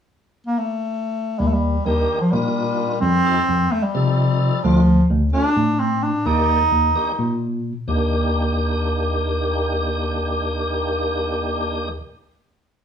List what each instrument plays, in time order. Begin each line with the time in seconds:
0.46 bass clarinet A#3
0.58 bass clarinet A3
1.39 tine electric piano D#2, bass clarinet G3
1.47 bass clarinet A3
1.53 bass clarinet G3
1.85 tine electric piano D#2, bass clarinet D#3, tonewheel organ D#3 A#3 D4 G4
2.20 bass clarinet F3
2.31 tine electric piano A#2, tonewheel organ D#3 A#3 D4 F4, bass clarinet G3
3.00 tine electric piano F2, bass clarinet C4
3.25 tonewheel organ F3 C4 D#4 A4
3.49 tine electric piano F2
3.71 bass clarinet A3
3.83 bass clarinet G3
3.94 tine electric piano C3, tonewheel organ F3 C4 D#4 A4
4.64 tine electric piano D2, tonewheel organ D3 A3 C4 F4, bass clarinet F3
5.10 tine electric piano D2
5.33 tonewheel organ D3 A3 C4 F4, bass clarinet D4
5.57 tine electric piano A2
5.79 bass clarinet C4
6.03 bass clarinet D4
6.26 tine electric piano D#2, tonewheel organ D#3 A#3 G4 D5, bass clarinet D#4
6.72 tine electric piano D#2
6.95 tonewheel organ D#3 A#3 D4 G4
7.19 tine electric piano A#2
7.88 tine electric piano D#2, tonewheel organ D#3 A#3 D4 G4